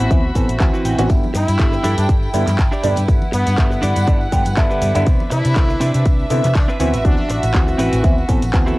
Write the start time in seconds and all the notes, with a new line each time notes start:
Already playing: C4 E4 F#4 C5 E5 B5
0.10 E3 B3 C4 E4, kick, closed hi-hat, shaker
0.35 A1 E3 B3 C4 A4 C5, kick, open hi-hat, shaker
0.49 A1, closed hi-hat, shaker
0.60 E3 C4 F#4 E5, kick, clap, closed hi-hat, shaker
0.73 C4 E4 F#4 B4, shaker
0.85 A1 G5, open hi-hat, shaker
0.98 A1 E3 B3 C4 F#4, closed hi-hat, shaker
1.09 D3 E4 B4 G5, kick, closed hi-hat, tambourine, shaker
1.23 tambourine, high conga
1.34 G2 E4, muted clean electric guitar stroke, open hi-hat, shaker
1.48 G2, muted clean electric guitar stroke, closed hi-hat, tambourine, shaker
1.59 G1 D3 G3 B3 E4, kick, clap, closed hi-hat, tambourine, shaker
1.72 muted clean electric guitar stroke, tambourine, shaker
1.84 G2 D4 E4 G4 A4, open hi-hat, high conga, shaker
1.98 G2 D4, closed hi-hat, tambourine, shaker
2.09 G1, kick, closed hi-hat, tambourine, shaker
2.23 tambourine
2.33 G2 D3 G3 B3 E4, open hi-hat, shaker
2.47 G2, clap, closed hi-hat, tambourine, high conga, shaker
2.59 G1, kick, clap, closed hi-hat, shaker
2.71 D4 E4 G4 D5, tambourine, shaker
2.83 G2 D3 G3 B3 D4, open hi-hat, low conga, shaker
2.96 G2, closed hi-hat, tambourine, low conga, shaker
3.08 G1 D3 G3 B3 E4 F#5, kick, closed hi-hat, tambourine, shaker
3.22 tambourine, high conga
3.32 G2 B3, muted clean electric guitar stroke, open hi-hat, shaker
3.46 G2, muted clean electric guitar stroke, closed hi-hat, tambourine, shaker
3.57 G1 D3 G3 B3 E4, kick, clap, closed hi-hat, tambourine, shaker
3.70 muted clean electric guitar stroke, tambourine, shaker
3.82 G2 D4 E4 G4 D5, open hi-hat, high conga, shaker
3.96 G2, closed hi-hat, tambourine, shaker
4.07 G1 D3 G3 B3 D4, kick, closed hi-hat, tambourine, shaker
4.21 tambourine
4.32 G2 D3 G3 B3 G4, kick, open hi-hat, shaker
4.45 G2, closed hi-hat, tambourine, high conga, shaker
4.57 G1 D3 G3 B3 E4 F#5, kick, clap, closed hi-hat, tambourine, shaker
4.69 D4 E4 G4 B4, tambourine, shaker
4.82 G2, open hi-hat, low conga, shaker
4.95 G2 D3 G3 B3 E4, closed hi-hat, tambourine, low conga, shaker
5.06 C2 D3 B3 D4 E5, kick, closed hi-hat, tambourine, shaker
5.20 tambourine, high conga
5.30 C3 E4, muted clean electric guitar stroke, open hi-hat, shaker
5.44 C3, muted clean electric guitar stroke, closed hi-hat, tambourine, shaker
5.56 C2 D3 B3 C4 E4, kick, clap, closed hi-hat, shaker
5.69 muted clean electric guitar stroke, tambourine, shaker
5.80 C3 C4 D4 E4 B4, open hi-hat, high conga, shaker
5.94 C3, closed hi-hat, tambourine, shaker
6.06 C2, kick, closed hi-hat, tambourine, shaker
6.20 tambourine
6.30 C3 D3 B3 C4 E4, open hi-hat, shaker
6.44 C3, clap, closed hi-hat, tambourine, high conga, shaker
6.55 C2 D4, kick, clap, closed hi-hat, tambourine, shaker
6.68 C4 D4 E4 B4, tambourine, shaker
6.79 D2 E3 B3 C4 E4 F#4 B4, open hi-hat, low conga, shaker
6.93 A1, closed hi-hat, tambourine, low conga, shaker
7.04 D2 E3 B3 C4 D4 F#4, kick, closed hi-hat, shaker
7.18 tambourine, high conga
7.29 A1, muted clean electric guitar stroke, open hi-hat, shaker
7.42 A1, muted clean electric guitar stroke, closed hi-hat, tambourine, shaker
7.54 E3 C4 F#4, kick, clap, closed hi-hat, shaker
7.67 muted clean electric guitar stroke, tambourine, shaker
7.78 A1 C4 E4 F#4 B4, open hi-hat, high conga, shaker
7.93 A1, closed hi-hat, tambourine, shaker
8.04 E3 B3 C4 E4, kick, closed hi-hat, tambourine, shaker
8.18 tambourine
8.28 A1 E3 B3 C4 A4, kick, open hi-hat, shaker
8.42 A1, closed hi-hat, tambourine, high conga, shaker
8.53 E3 B3 C4 F#4, kick, clap, closed hi-hat, shaker
8.66 C4 E4 F#4 A4, tambourine, shaker